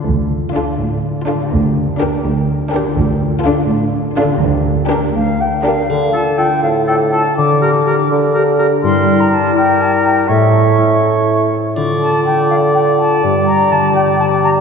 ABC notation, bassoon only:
X:1
M:6/8
L:1/8
Q:3/8=82
K:Dm
V:1 name="Bassoon" clef=bass
z6 | z6 | z6 | z6 |
D,3 A,,3 | D,3 D,3 | G,6 | A,4- A, z |
D,6 | G,6 |]